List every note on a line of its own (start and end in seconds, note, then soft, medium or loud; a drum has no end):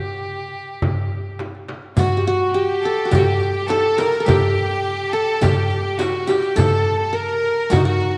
0.00 1.35 G4 medium
0.00 1.36 G4 medium
0.11 darbuka ka soft
0.55 darbuka ka soft
0.82 darbuka dum medium
0.82 frame drum medium
1.11 darbuka ka soft
1.39 darbuka tek medium
1.39 frame drum medium
1.55 darbuka ka soft
1.68 darbuka tek medium
1.68 frame drum medium
1.83 darbuka ka soft
1.97 2.24 F#4 medium
1.97 2.56 F#4 medium
1.97 2.23 F#4 medium
1.97 riq medium
1.97 frame drum medium
1.97 darbuka dum medium
2.12 darbuka ka soft
2.17 2.33 G4 medium
2.25 2.52 F#4 medium
2.25 2.60 F#4 medium
2.42 darbuka ka soft
2.52 2.82 G4 medium
2.52 3.11 G4 medium
2.52 3.12 G4 medium
2.82 3.11 A4 medium
2.82 3.70 A4 medium
2.82 riq soft
2.82 darbuka ka soft
3.05 3.21 F#4 medium
3.10 3.68 G4 medium
3.10 3.20 G4 medium
3.10 riq medium
3.10 frame drum medium
3.10 darbuka dum medium
3.15 3.26 F#4 medium
3.15 4.28 G4 medium
3.25 3.53 G4 medium
3.40 riq soft
3.40 darbuka ka soft
3.53 3.68 G4 medium
3.67 3.99 A4 medium
3.67 3.98 A4 medium
3.67 4.04 A4 loud
3.67 riq soft
3.67 frame drum medium
3.71 darbuka tek medium
3.97 4.27 A#4 medium
3.97 4.26 A#4 medium
3.97 riq soft
3.97 darbuka tek medium
3.97 frame drum medium
4.12 riq soft
4.20 5.13 A4 medium
4.25 4.83 G4 medium
4.25 5.10 G4 medium
4.25 5.41 G4 medium
4.25 riq soft
4.25 frame drum medium
4.25 darbuka dum medium
4.44 darbuka ka soft
4.72 darbuka ka soft
4.84 5.14 G4 medium
5.12 5.41 A4 medium
5.12 5.44 A4 medium
5.12 6.30 A4 medium
5.12 riq soft
5.41 6.05 G4 medium
5.41 5.99 G4 medium
5.41 5.84 G4 medium
5.41 riq medium
5.41 frame drum medium
5.41 darbuka dum medium
5.70 riq soft
5.70 darbuka ka soft
5.84 5.99 G4 medium
5.98 6.29 F#4 medium
5.98 6.33 F#4 medium
5.98 6.28 F#4 medium
5.98 riq soft
5.98 darbuka tek medium
5.98 frame drum medium
6.27 7.53 G4 medium
6.27 6.60 G4 medium
6.27 6.57 G4 medium
6.27 riq soft
6.27 darbuka tek medium
6.27 frame drum medium
6.42 riq soft
6.56 7.19 A4 medium
6.56 7.10 A4 medium
6.56 7.00 A4 medium
6.56 riq medium
6.56 darbuka dum medium
6.56 frame drum medium
6.73 darbuka ka soft
7.01 7.16 A4 medium
7.01 darbuka ka soft
7.13 8.18 A#4 medium
7.13 7.71 A#4 medium
7.13 7.74 A#4 medium
7.70 7.84 F#4 medium
7.70 7.85 F#4 medium
7.70 7.84 F#4 medium
7.70 riq medium
7.70 frame drum medium
7.70 darbuka dum medium
7.76 8.18 D#4 medium
7.85 8.18 F#4 medium
8.00 riq soft
8.00 darbuka ka soft